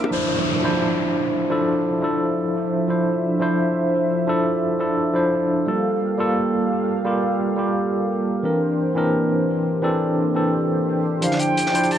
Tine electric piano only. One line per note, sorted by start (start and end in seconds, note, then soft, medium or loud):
0.00 0.14 A#3 medium
0.00 0.12 D4 medium
0.00 0.12 E4 medium
0.00 0.14 A#4 loud
0.11 0.61 F3 medium
0.11 0.62 D4 medium
0.11 0.62 E4 medium
0.11 0.63 C5 medium
0.63 1.48 F3 medium
0.63 1.49 D4 medium
0.63 1.49 E4 medium
0.63 1.49 C5 medium
1.49 2.00 F3 medium
1.49 2.01 D4 medium
1.49 2.01 E4 medium
1.49 2.01 A4 loud
2.02 2.87 F3 medium
2.02 2.87 D4 medium
2.02 2.88 E4 medium
2.02 2.88 A4 medium
2.88 3.39 F3 medium
2.88 3.39 D4 medium
2.88 3.40 E4 medium
2.88 3.40 C5 medium
3.40 4.25 F3 medium
3.40 4.26 D4 medium
3.40 4.26 E4 medium
3.40 4.27 C5 loud
4.27 4.78 F3 medium
4.27 4.78 D4 medium
4.27 4.78 E4 medium
4.27 4.79 A4 loud
4.79 5.12 F3 medium
4.79 5.13 D4 medium
4.79 5.13 E4 medium
4.79 5.13 A4 medium
5.14 5.64 F3 medium
5.14 5.65 D4 medium
5.14 5.65 E4 medium
5.14 5.65 C5 medium
5.66 6.17 G3 medium
5.66 6.17 A#3 medium
5.66 6.17 F4 medium
5.66 6.18 A4 medium
6.18 7.03 G3 medium
6.18 7.03 A#3 medium
6.18 7.04 F4 medium
6.18 7.04 A4 medium
7.04 7.55 G3 medium
7.04 7.55 A#3 medium
7.04 7.56 F4 medium
7.04 7.56 G4 loud
7.56 8.42 G3 medium
7.56 8.42 A#3 medium
7.56 8.43 F4 medium
7.56 8.43 G4 medium
8.43 8.94 E3 medium
8.43 8.94 C4 medium
8.43 8.95 D4 medium
8.43 8.95 A#4 medium
8.95 9.80 E3 medium
8.95 9.81 C4 medium
8.95 9.81 D4 medium
8.95 9.82 A#4 medium
9.82 10.32 E3 medium
9.82 10.33 C4 medium
9.82 10.33 D4 medium
9.82 10.34 A4 loud
10.34 11.19 E3 medium
10.34 11.20 C4 medium
10.34 11.20 D4 medium
10.34 11.20 A4 medium
11.21 11.71 F3 medium
11.21 11.72 D4 medium
11.21 11.72 E4 medium
11.21 11.73 C5 medium
11.73 11.98 F3 medium
11.73 11.98 D4 medium
11.73 11.98 E4 medium
11.73 11.98 C5 medium